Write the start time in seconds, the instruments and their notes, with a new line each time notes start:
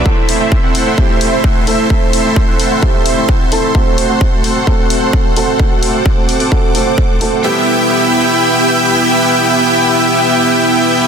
0.04 grand piano A3 C4 E4 A4, supersaw synth A3 C4 E4 A4 C5 E5 C6, kick
0.29 open hi-hat
0.40 supersaw synth A3 C4 E4 C5 E5
0.52 kick
0.63 supersaw synth A3 C4 E4 C5 F#5
0.75 open hi-hat
0.86 supersaw synth A3 C4 E4 C5 F#5
0.97 grand piano A3 C4 E4 G4, kick
1.09 supersaw synth A3 C4 E4 C5 E5
1.21 open hi-hat
1.32 supersaw synth A3 C4 E4 C5 E5
1.44 supersaw synth A3 C4 E4 C5 F#5, kick
1.67 grand piano A3 C4 E4 A4, supersaw synth A3 C4 E4 C5 E5, open hi-hat
1.89 grand piano A3 C4 E4 A4, supersaw synth A3 E4 E5, kick
2.13 open hi-hat
2.25 supersaw synth A3 C4 E4 C5 E5
2.36 kick
2.48 supersaw synth A3 C4 E4 C5 F#5
2.59 open hi-hat
2.71 supersaw synth A3 C4 E4 C5 F#5
2.81 grand piano A3 C4 E4 G4, supersaw synth A3 C4 E4 C5 G5, kick
2.94 supersaw synth A3 C4 E4 C5 E5
3.06 open hi-hat
3.17 supersaw synth A3 C4 E4 C5 E5
3.29 supersaw synth A3 C4 E4 C5 F#5, kick
3.51 grand piano A3 C4 E4 A4, supersaw synth A3 C4 E4 C5 E5, open hi-hat
3.74 grand piano A3 C4 F#4 A4, supersaw synth A3 F#5, kick
3.98 open hi-hat
4.09 supersaw synth A3 C4 F#4 C5 F#5
4.21 kick
4.33 supersaw synth A3 C4 F#4 C5 A5
4.44 open hi-hat
4.56 supersaw synth A3 C4 F#4 C5 A5
4.66 grand piano A3 C4 F#4 A4, supersaw synth C4 C5, kick
4.79 supersaw synth A3 C4 F#4 C5 F#5
4.90 open hi-hat
5.02 supersaw synth A3 C4 F#4 C5 F#5
5.13 supersaw synth A3 A5, kick
5.36 grand piano A3 C4 F#4 A4, supersaw synth A3 C4 F#4 C5 F#5, open hi-hat
5.58 grand piano A3, supersaw synth C4 C5 D6, kick
5.83 open hi-hat
5.94 supersaw synth A3 C4 F#4 C5 F#5
6.06 kick
6.17 supersaw synth A3 C4 F#4 C5 A5
6.29 open hi-hat
6.40 supersaw synth A3 C4 F#4 C5 A5, open hi-hat
6.51 grand piano A3 C4 F#4 A4, supersaw synth A3 C4 F#4 C5 F#5, kick
6.63 supersaw synth A3 C4 F#4 C5 F#5
6.74 grand piano A3 C4 F#4 A4, supersaw synth A3 C4 F#4 C5 A5, open hi-hat
6.86 supersaw synth A3 C4 F#4 C5 F#5
6.98 kick
7.20 grand piano A3 C4 F#4 A4, supersaw synth A3 C4 F#4 C5 E5, open hi-hat
7.42 grand piano G3 B3 E4 G4, supersaw synth B3 E4 G4 E5 G5 B5